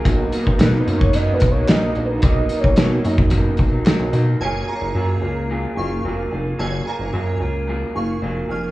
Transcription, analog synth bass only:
X:1
M:4/4
L:1/16
Q:1/4=110
K:F#
V:1 name="Analog synth bass" clef=bass
B,,,2 z B,,, B,,2 F,,4 B,,,2 A,,,2 A,,,2 | B,,,2 z B,,, B,,2 F,,4 B,,,2 B,,, B,,, B,,2 | F,,,2 z F,,, F,,2 C,,4 F,,,2 E,,,2 E,,,2 | F,,,2 z F,,, F,,2 C,,4 F,,,2 E,,,2 E,,,2 |]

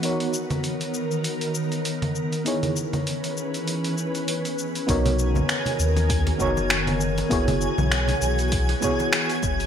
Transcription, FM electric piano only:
X:1
M:4/4
L:1/8
Q:"Swing 16ths" 1/4=99
K:B
V:1 name="FM electric piano"
[B,DFAc]8 | [B,DEGc]8 | [B,DFAc]4- [B,DFAc] [B,DFAc]3 | [B,EFGc]4- [B,EFGc] [B,EFGc]3 |]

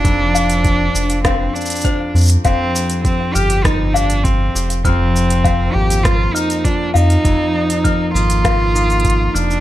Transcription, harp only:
X:1
M:4/4
L:1/8
Q:1/4=100
K:Fdor
V:1 name="Harp"
F,, C D C D C F C | F,, G C G C G F G | F,, C B, C B, C F C | F,, E B, E B, E F2 |]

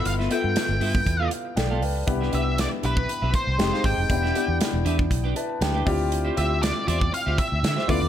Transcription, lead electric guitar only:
X:1
M:4/4
L:1/8
Q:"Swing 16ths" 1/4=119
K:Ddor
V:1 name="Lead electric guitar"
f g4 z3 | z e d B2 c2 g- | g2 z6 | z e d d f e2 d |]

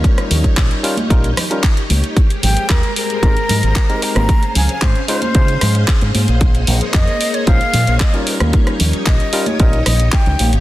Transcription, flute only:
X:1
M:4/4
L:1/16
Q:1/4=113
K:Ebmix
V:1 name="Flute"
z16 | z2 g2 B2 B8 b2- | b2 a2 c2 c8 z2 | z4 e3 d f4 e3 z |
z4 e3 d e2 e2 g3 z |]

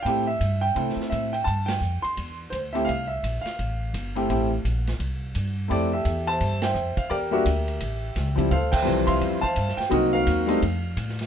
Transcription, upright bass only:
X:1
M:4/4
L:1/8
Q:"Swing" 1/4=170
K:F
V:1 name="Upright bass" clef=bass
A,,2 G,,2 C, z A,,2 | G,,2 F,, z E,,2 D,,2 | C,,2 B,,, z A,,,2 G,,,2 | A,,,2 B,,,2 C,,2 G,,2 |
F,,2 E,,2 G,,2 F,, z | E,,2 D,,2 A,,,2 ^C,,2 | D,,2 C,,2 E,,2 G,, z | C,,2 _E,,2 F,,2 A,,2 |]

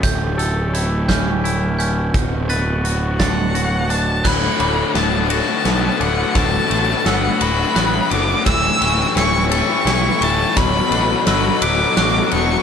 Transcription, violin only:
X:1
M:6/8
L:1/8
Q:3/8=57
K:D
V:1 name="Violin"
z6 | z3 f2 a | b2 a a2 f | a2 f b2 d' |
e'2 c' c'2 a | b2 b d'2 c' |]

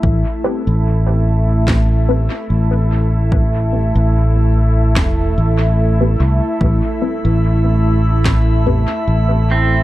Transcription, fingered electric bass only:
X:1
M:4/4
L:1/16
Q:"Swing 16ths" 1/4=73
K:Am
V:1 name="Fingered electric bass" clef=bass
A,,, z2 A,,,8 z A,,,4- | A,,,3 A,,,4- A,,, E,,,2 A,,,4 C,, z | A,,, z2 A,,,8 z A,,,4 |]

